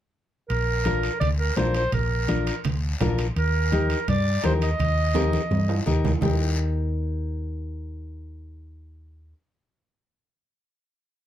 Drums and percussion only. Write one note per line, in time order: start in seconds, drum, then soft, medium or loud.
0.50 high conga soft
0.50 high timbale medium
0.50 long guiro medium
0.85 high conga medium
0.85 high timbale medium
0.85 short guiro medium
1.03 high timbale medium
1.03 short guiro medium
1.21 high conga soft
1.21 low conga medium
1.21 high timbale medium
1.21 long guiro medium
1.57 high conga medium
1.57 high timbale medium
1.57 low timbale medium
1.57 short guiro medium
1.75 high timbale medium
1.75 short guiro medium
1.92 high conga soft
1.92 low conga medium
1.92 high timbale medium
1.92 long guiro medium
2.28 high conga medium
2.28 high timbale medium
2.28 short guiro medium
2.47 high timbale medium
2.47 short guiro medium
2.64 high conga soft
2.64 low conga medium
2.64 high timbale medium
2.64 long guiro medium
3.01 high conga medium
3.01 low conga medium
3.01 high timbale medium
3.01 low timbale medium
3.01 short guiro medium
3.18 high timbale medium
3.18 short guiro medium
3.36 high conga soft
3.36 high timbale medium
3.36 long guiro medium
3.73 high conga medium
3.73 high timbale medium
3.73 short guiro medium
3.90 high timbale medium
3.90 short guiro medium
4.08 high conga soft
4.08 low conga medium
4.08 high timbale medium
4.08 long guiro medium
4.44 high conga medium
4.44 high timbale medium
4.44 low timbale medium
4.44 short guiro medium
4.62 high timbale medium
4.62 short guiro medium
4.79 high conga soft
4.79 low conga medium
4.79 high timbale medium
4.79 long guiro medium
5.15 high conga medium
5.15 high timbale medium
5.15 short guiro medium
5.33 high conga medium
5.33 short guiro medium
5.51 high conga medium
5.51 high timbale medium
5.51 long guiro medium
5.69 low timbale medium
5.87 low conga medium
5.87 short guiro medium
6.05 low conga medium
6.05 low timbale medium
6.05 short guiro medium
6.22 low conga loud
6.22 low timbale medium
6.22 long guiro medium